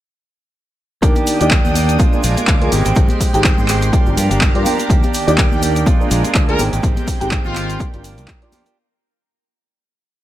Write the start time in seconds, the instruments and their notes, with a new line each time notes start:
1.02 fingered electric bass D#2, grand piano D#3 A#3 D4 G4, clean electric guitar A#3 D4 G4, string machine D4 G5 D#6, kick, closed hi-hat, cabasa, shaker
1.15 clean electric guitar D4 G4, closed hi-hat, high conga, shaker
1.27 open hi-hat, cabasa, shaker
1.40 fingered electric bass D#2, grand piano A#3 D4 D#4 G4, clean electric guitar D4 G4, closed hi-hat, cabasa, shaker
1.50 clean electric guitar A#3 D4 G4, kick, clap, closed hi-hat, cabasa, shaker
1.65 fingered electric bass D#2, high conga, shaker
1.75 clean electric guitar A#3 D4 G4, open hi-hat, cabasa, shaker
1.89 closed hi-hat, cabasa, shaker
1.99 clean electric guitar F3 G#3 D4 F4, string machine A#4 G#5 D6, kick, closed hi-hat, high conga, cabasa, shaker
2.13 grand piano A#3 D4 F4 G#4, shaker
2.23 fingered electric bass A#1, clean electric guitar F3 G#3 D4 F4, open hi-hat, cabasa, shaker
2.36 clean electric guitar G#3 D4 F4, muted fingered electric bass stroke, closed hi-hat, high conga, cabasa, shaker
2.47 fingered electric bass D2, clean electric guitar F3 G#3 D4 F4, kick, clap, closed hi-hat, cabasa, shaker
2.61 grand piano A#3 D4 F4 G#4, closed hi-hat
2.71 fingered electric bass G#1, clean electric guitar D#3 G#3 C4 G4, grand piano G#3 C4 D#4 G4, string machine G#3 G5 C6, open hi-hat, high conga, cabasa, shaker
2.85 fingered electric bass G#1, clean electric guitar G#3 C4 G4, closed hi-hat, cabasa, shaker
2.95 fingered electric bass G#1, clean electric guitar D#3 G#3 C4 G4, kick, closed hi-hat, cabasa, shaker
3.09 clean electric guitar G#3 C4 G4, closed hi-hat, high conga, shaker
3.20 kick, open hi-hat, cabasa, shaker
3.33 fingered electric bass G#1, grand piano G#3 C4 D#4 G4, clean electric guitar G#3 C4 G4, closed hi-hat, cabasa, shaker
3.44 clean electric guitar D#3 G#3 C4 G4, kick, clap, closed hi-hat, cabasa, shaker
3.58 fingered electric bass G#1, high conga, shaker
3.68 clean electric guitar D#3 G#3 C4 G4, clap, open hi-hat, cabasa, shaker
3.82 closed hi-hat, cabasa, shaker
3.93 clean electric guitar F3 A#3 D4 G4, string machine G4 F5 A#5, kick, closed hi-hat, high conga, cabasa, shaker
4.06 fingered electric bass G1, grand piano A#3 D4 F4 G4, shaker
4.17 fingered electric bass G2, clean electric guitar F3 A#3 D4 G4, open hi-hat, cabasa, shaker
4.30 fingered electric bass G1, clean electric guitar A#3 D4 G4, closed hi-hat, high conga, cabasa, shaker
4.41 clean electric guitar F3 A#3, kick, clap, closed hi-hat, cabasa, shaker
4.54 fingered electric bass G2, grand piano A#3 D4 F4 G4, clean electric guitar A#3 D4 G4, closed hi-hat
4.65 clean electric guitar F3 A#3 D4 G4, grand piano A#3 D4 F4 G4, open hi-hat, high conga, cabasa, shaker
4.78 clean electric guitar A#3 D4 G4, closed hi-hat, cabasa, shaker
4.89 fingered electric bass D#2, string machine D#3 D5 G5, clean electric guitar A#3 D4 G4, kick, closed hi-hat, cabasa, shaker
5.03 clean electric guitar D4 G4, closed hi-hat, high conga, shaker
5.14 open hi-hat, cabasa, shaker
5.27 fingered electric bass D#2, grand piano A#3 D4 D#4 G4, clean electric guitar D4 G4, closed hi-hat, cabasa, shaker
5.38 clean electric guitar A#3 D4 G4, kick, clap, closed hi-hat, cabasa, shaker
5.51 fingered electric bass D#2, high conga, shaker
5.62 clean electric guitar A#3 D4 G4, open hi-hat, cabasa, shaker
5.76 closed hi-hat, cabasa, shaker
5.86 clean electric guitar F3 G#3 D4 F4, string machine D4 A#4 G#5, kick, closed hi-hat, high conga, cabasa, shaker
6.00 grand piano A#3 D4 F4 G#4, shaker
6.10 fingered electric bass A#1, clean electric guitar F3 G#3 D4 F4, open hi-hat, cabasa, shaker
6.24 clean electric guitar G#3 D4 F4, closed hi-hat, high conga, cabasa, shaker
6.35 fingered electric bass D2, clean electric guitar F3 G#3 F4, kick, clap, closed hi-hat, cabasa, shaker
6.48 clean electric guitar G#3 D4 F4, grand piano A#3 D4 F4 G#4, trumpet section A#4, closed hi-hat
6.59 fingered electric bass G#1, clean electric guitar D#3 G#3 C4 G4, grand piano G#3 C4 D#4 G4, string machine G#3 C4 G5, open hi-hat, high conga, cabasa, shaker
6.72 fingered electric bass G#1, clean electric guitar G#3 C4 G4, closed hi-hat, cabasa, shaker
6.83 clean electric guitar D#3 G#3 C4 G4, kick, closed hi-hat, cabasa, shaker
6.96 clean electric guitar G#3 C4 G4, closed hi-hat, high conga, shaker
7.07 kick, open hi-hat, cabasa, shaker
7.20 fingered electric bass G#1, grand piano G#3 C4 D#4 G4, clean electric guitar G#3 C4 G4, closed hi-hat, cabasa, shaker
7.31 clean electric guitar D#3 G#3 C4 G4, kick, clap, closed hi-hat, cabasa, shaker
7.44 fingered electric bass G#1, trumpet section F4, high conga, shaker
7.55 clean electric guitar D#3 G#3 C4 G4, clap, open hi-hat, cabasa, shaker
7.69 closed hi-hat, cabasa, shaker
7.80 clean electric guitar F3 A#3 D4 G4, string machine F4 A#4, kick, closed hi-hat, high conga, cabasa, shaker
7.93 fingered electric bass G1, grand piano A#3 D4 F4 G4, closed hi-hat, shaker
8.04 clean electric guitar F3 A#3 D4 G4, open hi-hat, cabasa, shaker
8.17 fingered electric bass C2, closed hi-hat, high conga, cabasa, shaker
8.28 kick, clap, closed hi-hat, cabasa, shaker
8.41 grand piano A#3 D4 F4 G4, clean electric guitar A#3 D4 G4, closed hi-hat
8.52 clean electric guitar F3 A#3 D4 G4, grand piano A#3 D4 F4 G4, open hi-hat, high conga, cabasa, shaker
8.65 clean electric guitar A#3 D4 G4, closed hi-hat, cabasa, shaker